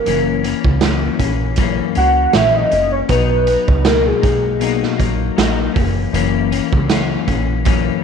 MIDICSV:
0, 0, Header, 1, 5, 480
1, 0, Start_track
1, 0, Tempo, 759494
1, 42, Time_signature, 4, 2, 24, 8
1, 5081, End_track
2, 0, Start_track
2, 0, Title_t, "Soft synth lead"
2, 0, Program_c, 0, 80
2, 0, Note_on_c, 0, 70, 89
2, 154, Note_off_c, 0, 70, 0
2, 1245, Note_on_c, 0, 78, 108
2, 1483, Note_on_c, 0, 76, 103
2, 1493, Note_off_c, 0, 78, 0
2, 1612, Note_on_c, 0, 75, 103
2, 1621, Note_off_c, 0, 76, 0
2, 1841, Note_off_c, 0, 75, 0
2, 1845, Note_on_c, 0, 73, 95
2, 1895, Note_off_c, 0, 73, 0
2, 1955, Note_on_c, 0, 71, 103
2, 2431, Note_on_c, 0, 70, 88
2, 2441, Note_off_c, 0, 71, 0
2, 2567, Note_on_c, 0, 68, 73
2, 2576, Note_off_c, 0, 70, 0
2, 3050, Note_off_c, 0, 68, 0
2, 5081, End_track
3, 0, Start_track
3, 0, Title_t, "Clean electric guitar"
3, 0, Program_c, 1, 27
3, 35, Note_on_c, 1, 42, 67
3, 43, Note_on_c, 1, 52, 77
3, 51, Note_on_c, 1, 58, 78
3, 56, Note_on_c, 1, 61, 82
3, 268, Note_off_c, 1, 61, 0
3, 275, Note_on_c, 1, 61, 61
3, 278, Note_off_c, 1, 42, 0
3, 280, Note_off_c, 1, 58, 0
3, 282, Note_off_c, 1, 52, 0
3, 288, Note_on_c, 1, 58, 57
3, 299, Note_on_c, 1, 52, 53
3, 514, Note_on_c, 1, 42, 62
3, 516, Note_off_c, 1, 52, 0
3, 518, Note_off_c, 1, 61, 0
3, 523, Note_on_c, 1, 52, 72
3, 525, Note_off_c, 1, 58, 0
3, 533, Note_on_c, 1, 58, 71
3, 539, Note_on_c, 1, 61, 70
3, 744, Note_off_c, 1, 61, 0
3, 752, Note_on_c, 1, 61, 59
3, 758, Note_off_c, 1, 42, 0
3, 758, Note_off_c, 1, 58, 0
3, 762, Note_off_c, 1, 52, 0
3, 766, Note_on_c, 1, 58, 50
3, 778, Note_on_c, 1, 52, 44
3, 997, Note_off_c, 1, 61, 0
3, 997, Note_on_c, 1, 42, 81
3, 999, Note_off_c, 1, 52, 0
3, 1000, Note_off_c, 1, 58, 0
3, 1006, Note_on_c, 1, 52, 81
3, 1008, Note_on_c, 1, 58, 85
3, 1012, Note_on_c, 1, 61, 80
3, 1228, Note_off_c, 1, 61, 0
3, 1236, Note_on_c, 1, 61, 54
3, 1239, Note_off_c, 1, 42, 0
3, 1241, Note_off_c, 1, 58, 0
3, 1244, Note_off_c, 1, 52, 0
3, 1249, Note_on_c, 1, 58, 49
3, 1258, Note_on_c, 1, 52, 46
3, 1474, Note_on_c, 1, 42, 65
3, 1478, Note_off_c, 1, 52, 0
3, 1479, Note_off_c, 1, 61, 0
3, 1485, Note_off_c, 1, 58, 0
3, 1486, Note_on_c, 1, 52, 67
3, 1493, Note_on_c, 1, 58, 67
3, 1500, Note_on_c, 1, 61, 69
3, 1708, Note_off_c, 1, 61, 0
3, 1715, Note_on_c, 1, 61, 46
3, 1718, Note_off_c, 1, 42, 0
3, 1724, Note_off_c, 1, 52, 0
3, 1724, Note_off_c, 1, 58, 0
3, 1732, Note_on_c, 1, 58, 44
3, 1742, Note_on_c, 1, 52, 39
3, 1951, Note_on_c, 1, 47, 74
3, 1955, Note_off_c, 1, 52, 0
3, 1958, Note_on_c, 1, 54, 81
3, 1959, Note_off_c, 1, 61, 0
3, 1967, Note_off_c, 1, 58, 0
3, 1968, Note_on_c, 1, 63, 88
3, 2189, Note_off_c, 1, 63, 0
3, 2196, Note_off_c, 1, 47, 0
3, 2197, Note_on_c, 1, 63, 50
3, 2200, Note_off_c, 1, 54, 0
3, 2219, Note_on_c, 1, 54, 41
3, 2431, Note_on_c, 1, 47, 60
3, 2433, Note_off_c, 1, 54, 0
3, 2439, Note_off_c, 1, 63, 0
3, 2441, Note_on_c, 1, 54, 55
3, 2447, Note_on_c, 1, 58, 66
3, 2456, Note_on_c, 1, 63, 61
3, 2657, Note_off_c, 1, 63, 0
3, 2664, Note_on_c, 1, 63, 52
3, 2673, Note_off_c, 1, 58, 0
3, 2676, Note_off_c, 1, 47, 0
3, 2680, Note_on_c, 1, 58, 49
3, 2681, Note_off_c, 1, 54, 0
3, 2692, Note_on_c, 1, 54, 39
3, 2905, Note_off_c, 1, 54, 0
3, 2907, Note_on_c, 1, 47, 71
3, 2912, Note_off_c, 1, 58, 0
3, 2913, Note_off_c, 1, 63, 0
3, 2913, Note_on_c, 1, 54, 75
3, 2919, Note_on_c, 1, 58, 71
3, 2925, Note_on_c, 1, 63, 78
3, 3139, Note_off_c, 1, 63, 0
3, 3147, Note_on_c, 1, 63, 57
3, 3152, Note_off_c, 1, 58, 0
3, 3155, Note_off_c, 1, 47, 0
3, 3157, Note_off_c, 1, 54, 0
3, 3159, Note_on_c, 1, 58, 58
3, 3169, Note_on_c, 1, 54, 50
3, 3384, Note_off_c, 1, 54, 0
3, 3392, Note_off_c, 1, 58, 0
3, 3392, Note_on_c, 1, 54, 71
3, 3395, Note_off_c, 1, 63, 0
3, 3400, Note_on_c, 1, 58, 80
3, 3409, Note_on_c, 1, 63, 75
3, 3626, Note_off_c, 1, 63, 0
3, 3628, Note_on_c, 1, 61, 53
3, 3634, Note_off_c, 1, 58, 0
3, 3637, Note_off_c, 1, 54, 0
3, 3641, Note_on_c, 1, 58, 48
3, 3653, Note_on_c, 1, 52, 46
3, 3872, Note_off_c, 1, 52, 0
3, 3872, Note_on_c, 1, 42, 84
3, 3875, Note_off_c, 1, 61, 0
3, 3878, Note_off_c, 1, 58, 0
3, 3880, Note_on_c, 1, 52, 83
3, 3885, Note_on_c, 1, 58, 95
3, 3887, Note_on_c, 1, 61, 88
3, 4104, Note_off_c, 1, 61, 0
3, 4112, Note_on_c, 1, 61, 63
3, 4117, Note_off_c, 1, 42, 0
3, 4119, Note_off_c, 1, 58, 0
3, 4121, Note_off_c, 1, 52, 0
3, 4127, Note_on_c, 1, 58, 56
3, 4137, Note_on_c, 1, 52, 49
3, 4351, Note_on_c, 1, 42, 65
3, 4352, Note_off_c, 1, 52, 0
3, 4357, Note_off_c, 1, 61, 0
3, 4359, Note_on_c, 1, 52, 65
3, 4362, Note_off_c, 1, 58, 0
3, 4369, Note_on_c, 1, 58, 68
3, 4371, Note_on_c, 1, 61, 74
3, 4586, Note_off_c, 1, 61, 0
3, 4594, Note_on_c, 1, 61, 56
3, 4597, Note_off_c, 1, 42, 0
3, 4598, Note_off_c, 1, 58, 0
3, 4601, Note_off_c, 1, 52, 0
3, 4606, Note_on_c, 1, 58, 48
3, 4617, Note_on_c, 1, 52, 44
3, 4831, Note_off_c, 1, 52, 0
3, 4833, Note_on_c, 1, 42, 77
3, 4837, Note_off_c, 1, 58, 0
3, 4839, Note_off_c, 1, 61, 0
3, 4839, Note_on_c, 1, 52, 84
3, 4845, Note_on_c, 1, 58, 89
3, 4849, Note_on_c, 1, 61, 89
3, 5064, Note_off_c, 1, 61, 0
3, 5078, Note_off_c, 1, 42, 0
3, 5079, Note_off_c, 1, 58, 0
3, 5081, Note_off_c, 1, 52, 0
3, 5081, End_track
4, 0, Start_track
4, 0, Title_t, "Analog synth bass"
4, 0, Program_c, 2, 38
4, 44, Note_on_c, 2, 30, 110
4, 341, Note_off_c, 2, 30, 0
4, 410, Note_on_c, 2, 37, 89
4, 690, Note_off_c, 2, 37, 0
4, 757, Note_on_c, 2, 34, 92
4, 1143, Note_off_c, 2, 34, 0
4, 1244, Note_on_c, 2, 37, 85
4, 1435, Note_off_c, 2, 37, 0
4, 1483, Note_on_c, 2, 34, 97
4, 1675, Note_off_c, 2, 34, 0
4, 1720, Note_on_c, 2, 30, 92
4, 1913, Note_off_c, 2, 30, 0
4, 1956, Note_on_c, 2, 35, 100
4, 2256, Note_off_c, 2, 35, 0
4, 2326, Note_on_c, 2, 37, 100
4, 2608, Note_off_c, 2, 37, 0
4, 2675, Note_on_c, 2, 35, 86
4, 3062, Note_off_c, 2, 35, 0
4, 3158, Note_on_c, 2, 34, 89
4, 3351, Note_off_c, 2, 34, 0
4, 3400, Note_on_c, 2, 34, 97
4, 3593, Note_off_c, 2, 34, 0
4, 3644, Note_on_c, 2, 30, 101
4, 3835, Note_off_c, 2, 30, 0
4, 3874, Note_on_c, 2, 30, 114
4, 4175, Note_off_c, 2, 30, 0
4, 4252, Note_on_c, 2, 37, 92
4, 4532, Note_off_c, 2, 37, 0
4, 4602, Note_on_c, 2, 34, 98
4, 4987, Note_off_c, 2, 34, 0
4, 5081, End_track
5, 0, Start_track
5, 0, Title_t, "Drums"
5, 39, Note_on_c, 9, 42, 73
5, 102, Note_off_c, 9, 42, 0
5, 281, Note_on_c, 9, 42, 70
5, 344, Note_off_c, 9, 42, 0
5, 408, Note_on_c, 9, 36, 85
5, 471, Note_off_c, 9, 36, 0
5, 511, Note_on_c, 9, 42, 82
5, 512, Note_on_c, 9, 38, 97
5, 575, Note_off_c, 9, 38, 0
5, 575, Note_off_c, 9, 42, 0
5, 756, Note_on_c, 9, 36, 98
5, 758, Note_on_c, 9, 42, 68
5, 819, Note_off_c, 9, 36, 0
5, 822, Note_off_c, 9, 42, 0
5, 986, Note_on_c, 9, 42, 86
5, 997, Note_on_c, 9, 36, 95
5, 1050, Note_off_c, 9, 42, 0
5, 1061, Note_off_c, 9, 36, 0
5, 1234, Note_on_c, 9, 42, 61
5, 1297, Note_off_c, 9, 42, 0
5, 1475, Note_on_c, 9, 38, 99
5, 1477, Note_on_c, 9, 42, 77
5, 1538, Note_off_c, 9, 38, 0
5, 1540, Note_off_c, 9, 42, 0
5, 1716, Note_on_c, 9, 42, 56
5, 1779, Note_off_c, 9, 42, 0
5, 1952, Note_on_c, 9, 42, 84
5, 1955, Note_on_c, 9, 36, 104
5, 2016, Note_off_c, 9, 42, 0
5, 2018, Note_off_c, 9, 36, 0
5, 2193, Note_on_c, 9, 42, 73
5, 2256, Note_off_c, 9, 42, 0
5, 2327, Note_on_c, 9, 36, 89
5, 2390, Note_off_c, 9, 36, 0
5, 2432, Note_on_c, 9, 38, 106
5, 2432, Note_on_c, 9, 42, 84
5, 2495, Note_off_c, 9, 42, 0
5, 2496, Note_off_c, 9, 38, 0
5, 2676, Note_on_c, 9, 36, 92
5, 2677, Note_on_c, 9, 42, 74
5, 2739, Note_off_c, 9, 36, 0
5, 2740, Note_off_c, 9, 42, 0
5, 2913, Note_on_c, 9, 42, 83
5, 2977, Note_off_c, 9, 42, 0
5, 3052, Note_on_c, 9, 38, 34
5, 3116, Note_off_c, 9, 38, 0
5, 3157, Note_on_c, 9, 36, 83
5, 3159, Note_on_c, 9, 42, 63
5, 3220, Note_off_c, 9, 36, 0
5, 3223, Note_off_c, 9, 42, 0
5, 3401, Note_on_c, 9, 38, 90
5, 3403, Note_on_c, 9, 42, 79
5, 3465, Note_off_c, 9, 38, 0
5, 3466, Note_off_c, 9, 42, 0
5, 3641, Note_on_c, 9, 36, 99
5, 3644, Note_on_c, 9, 46, 49
5, 3704, Note_off_c, 9, 36, 0
5, 3707, Note_off_c, 9, 46, 0
5, 3883, Note_on_c, 9, 42, 80
5, 3946, Note_off_c, 9, 42, 0
5, 4123, Note_on_c, 9, 42, 80
5, 4186, Note_off_c, 9, 42, 0
5, 4251, Note_on_c, 9, 36, 93
5, 4314, Note_off_c, 9, 36, 0
5, 4358, Note_on_c, 9, 38, 97
5, 4358, Note_on_c, 9, 42, 82
5, 4421, Note_off_c, 9, 42, 0
5, 4422, Note_off_c, 9, 38, 0
5, 4600, Note_on_c, 9, 36, 85
5, 4601, Note_on_c, 9, 42, 71
5, 4663, Note_off_c, 9, 36, 0
5, 4664, Note_off_c, 9, 42, 0
5, 4837, Note_on_c, 9, 42, 98
5, 4844, Note_on_c, 9, 36, 92
5, 4900, Note_off_c, 9, 42, 0
5, 4907, Note_off_c, 9, 36, 0
5, 5081, End_track
0, 0, End_of_file